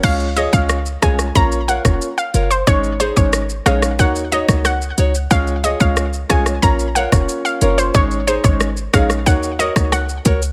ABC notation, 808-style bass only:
X:1
M:4/4
L:1/16
Q:1/4=91
K:Db
V:1 name="808-style bass" clef=bass
D,,3 D,,3 C,,2 B,,,3 F,,, z2 G,,,2 | A,,,3 A,,,3 B,,,2 E,,3 D,,3 D,,2 | D,,3 D,,3 C,,2 B,,,3 F,,, z2 G,,,2 | A,,,3 A,,,3 B,,,2 E,,3 D,,3 D,,2 |]